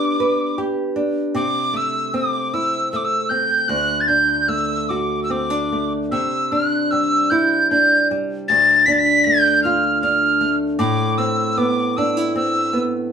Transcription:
Already playing: B3 D4 G4 D6
0.20 B4
0.58 G4
0.96 D4
1.35 C3 D6
1.73 A3 E6
2.14 C4 D6
2.54 E4 E6
2.92 A3 E6
2.96 D6
3.05 E6
3.29 C4 G6
3.68 D2 F#6
4.01 A6
4.08 D4 G6
4.48 A3 E6
4.89 F#4 D6
5.23 E6
5.30 C4 D6
5.50 D4
5.72 A3
6.12 C3 E6
6.52 D4 F#6
6.91 G3 E6
7.30 E4 G6
7.71 D4 G6
8.11 G3
8.48 D2 A6
8.86 D4 B6
8.92 A6
8.99 B6
9.25 A3 G6
9.63 F4 F6
10.01 D4 F6
10.41 A3
10.79 A2 D6
11.18 C4 E6
11.58 B3 D6
11.97 D4 E6
12.17 E4
12.35 C4 E6
12.73 B3

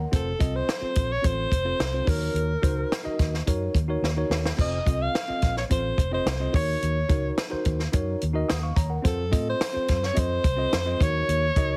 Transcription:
0.00 A#4 F#5
0.11 F1 C4 F4 A4 C5, kick, closed hi-hat
0.39 C2 C4 F4 A4 D#5, kick, closed hi-hat
0.56 C5
0.69 snare, closed hi-hat
0.81 C4 F4 A4 C5, muted fingered electric bass stroke
0.95 A#1, kick, closed hi-hat
1.12 C#5
1.22 A1 C4 F4 A4 C5, kick, closed hi-hat
1.27 C5
1.51 F1, kick, closed hi-hat
1.65 C4 F4 A4 C5
1.80 C2, snare, closed hi-hat
1.93 C4 F4 A4 C5
2.05 D#2 D#4 F#4 A#4 C#5, kick, open hi-hat
2.09 A#4
2.34 D#2, closed hi-hat
2.62 C#2 D#4 F#4 A#4 C5, kick, closed hi-hat
2.92 snare, closed hi-hat
3.04 D#4 F#4 A#4 D#5, muted fingered electric bass stroke
3.19 D#2, kick, snare, closed hi-hat
3.34 snare
3.46 F#2 D#4 F#4 A#4 C#5, kick, closed hi-hat
3.75 D#2, kick, closed hi-hat
3.88 D#4 F#4 A#4 C#5
4.02 D#2, snare
4.16 D#4 F#4 A#4 C#5
4.30 D#2, snare
4.46 snare
4.57 F1 C4 F4 A4 C5 D#5, kick, splash
4.86 C2 C4 F4 A4 D#5, kick, closed hi-hat
5.02 F5
5.15 snare, closed hi-hat
5.28 C4 F4 A4 D#5, muted fingered electric bass stroke
5.42 A#1, kick, snare, closed hi-hat
5.57 C#5, snare
5.70 A1 C4 F4 A4 C5, kick, closed hi-hat
5.98 F1, kick, closed hi-hat
6.12 C4 F4 A4 C5 D#5
6.26 C2, snare, closed hi-hat
6.40 C4 F4 A4 D#5
6.53 D#2 D#4 F#4 A#4 C#5, kick, open hi-hat
6.82 D#2, closed hi-hat
7.09 C#2 D#4 F#4 A#4 C#5, kick, closed hi-hat
7.38 snare, closed hi-hat
7.50 D#4 F#4 A#4 C5, muted fingered electric bass stroke
7.65 D#2, kick, closed hi-hat
7.80 snare
7.92 F#2 D#4 F#4 A#4 C#5, kick, closed hi-hat
8.21 D#2, closed hi-hat
8.34 D#4 F#4 A#4 D#5
8.49 D#2 F#5 D#6, snare, closed hi-hat
8.63 F5 C#6
8.76 D#2 C#5 A#5, kick, closed hi-hat
8.90 A#4 F#5
9.02 F2 C4 F4 A4 C5, kick, closed hi-hat
9.07 A4
9.31 A2 C4 F4 A4 D#5, kick, closed hi-hat
9.50 C5
9.61 snare, closed hi-hat
9.73 C4 F4 A4 C5, muted fingered electric bass stroke
9.88 F#2, kick, snare, closed hi-hat
10.03 C#5, snare
10.14 F2 C4 F4 A4 D#5, kick, closed hi-hat
10.19 C5
10.44 C2, kick, closed hi-hat
10.57 C4 F4 A4 D#5
10.73 F2, snare, closed hi-hat
10.85 C4 F4 A4 D#5
11.00 D#2 D#4 F#4 A#4 C#5, kick, closed hi-hat
11.28 D#2, closed hi-hat
11.56 C#2 D#4 F#4 A#4 D#5, kick, closed hi-hat

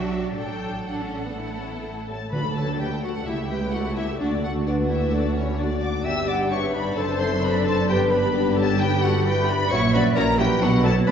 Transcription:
Already playing: B1 F#3 D4 F#4 G4 E5
0.23 D5
0.38 A1 F#3 D4 A4 G5
0.88 D4 A4 F#5
1.02 C#4
1.26 B3
1.37 A3 E4 A4
1.60 C#4
1.73 B3
1.84 A3
2.08 G3 A4 C#5 A5
2.21 A3
2.32 D2 D3 F#3 A3 D4 A4 B4 D5 B5
2.56 A4 C#5 A5
2.80 G4 B4 G5
3.03 F#4 A4 F#5
3.26 C#2 A3 E4 G4 E5
3.50 G4 B4 G5
3.73 F#4 A4 F#5
3.97 E4 G4 E5
4.20 D2 D4 F#4 D5
4.43 F#4 A4 F#5
4.67 D4 F#4 B4 D5
4.89 E4 G4 E5
5.12 D4 F#4 A4 D5
5.36 C#4 E4 C#5
5.59 D4 F#4 D5
5.82 D5 F#5 D6
6.05 G1 G2 B3 D4 G4 E5 G5 E6
6.28 D5 F#5 D6
6.51 B4 C#5 E5 C#6
6.74 B4 D5 B5
6.97 F#1 F#2 C4 A4 C5 A5
7.20 C5 E5 C6
7.43 B4 D5 B5
7.66 A4 C5 A5
7.89 G1 G2 B3 D4 G4 B4 G5
8.11 B4 D5 B5
8.35 G4
8.56 A4 C#5 A5
8.79 G4 B4 G5
9.03 F#4 A4 F#5
9.26 E4 G4 B4 G5
9.49 B4 D5 B5
9.71 A#1 A#2 F#3 C#4 E4 F#4 C#5 E5 C#6
9.93 F#3 C#4 E4 F#4 B4 D5 B5
10.16 A#1 A#2 F#3 C#4 E4 F#4 A#4 C#5 A#5
10.38 F#3 C#4 E4 F#4 G4 B4 G5
10.61 B1 B2 F#3 B3 D4 F#4 B4 F#5
10.84 F#3 B3 D4 A4 C#5 A5
11.06 B1 B2 F#3 B3 D4 F#4 B4 D5 B5

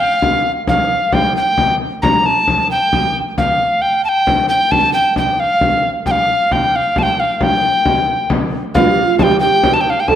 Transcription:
0.00 F5, frame drum
0.22 frame drum
0.67 F5, frame drum
0.90 frame drum
1.12 G5, frame drum
1.35 G5, frame drum
1.58 frame drum
2.02 A#5, frame drum
2.26 A5
2.48 frame drum
2.70 G5, frame drum
2.93 frame drum
3.15 frame drum
3.38 F5, frame drum
3.60 frame drum
3.82 G5
4.04 A5, frame drum
4.09 G5
4.27 frame drum
4.49 G5
4.71 A5, frame drum
4.93 G5, frame drum
5.16 G5, frame drum
5.38 F5, frame drum
5.61 frame drum
6.06 G5, frame drum
6.11 F5
6.29 frame drum
6.51 G5, frame drum
6.74 F5, frame drum
6.96 A5, frame drum
7.03 G5
7.20 F5
7.41 G5, frame drum
7.63 frame drum
7.85 frame drum
8.30 frame drum
8.53 frame drum
8.74 F4 F5, frame drum
8.89 G4
8.97 frame drum
9.04 F4
9.19 G4 G5 A5, frame drum
9.40 G4 G5, frame drum
9.63 frame drum
9.73 A5
9.81 G5
9.90 F5
10.00 G5
10.08 A4 A5, frame drum

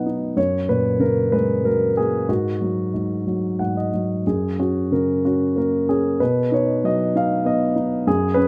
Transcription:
Already playing: B2 F#3 B3 D#4 D#5 F#5
0.06 D#4
0.36 F#2 C#5
0.68 A#2 B4
0.99 C#3 A#4
1.32 G#3 B4
1.63 F#3 A#4
1.97 A#3 G#4
2.29 G#2 F#4
2.61 F#3
2.94 G#2
3.27 F#3
3.59 G#2 F#5
3.77 D#5
3.94 F#3
4.27 F#2 G#4
4.59 C#4 F#4
4.92 C#3 A#4
5.25 C#4 F#4
5.56 A#3 A#4
5.89 C#4 G#4
6.20 B2 B4
6.52 D#4 C#5
6.84 F#3 D#5
7.15 D#4 F5
7.45 B3 D#5
7.76 D#4
8.07 F#2 G#4
8.34 C#4 B4

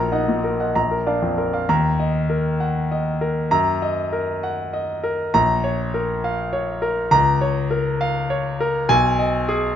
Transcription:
Already playing: A#1 A#4 A#5
0.12 D#4 D#5 F#5
0.28 A#2
0.44 A#4
0.60 D#5 F#5
0.75 A#1 A#5
0.91 A#4
1.06 D4 D5 F5
1.22 F2
1.38 A#4
1.53 D5 F5
1.69 D#2 A#5
1.99 D#5
2.30 A#4
2.60 F#5
2.91 D#5
3.21 A#4
3.51 F#2 A#5
3.82 D#5
4.13 A#4
4.43 F#5
4.73 D#5
5.04 A#4
5.34 A#1 A#5
5.64 C#5
5.94 A#4
6.24 F5
6.53 C#5
6.82 A#4
7.11 C#2 A#5
7.41 C#5
7.71 A#4
8.01 F5
8.30 C#5
8.60 A#4
8.89 B1 G#5
9.19 D#5
9.49 G#4

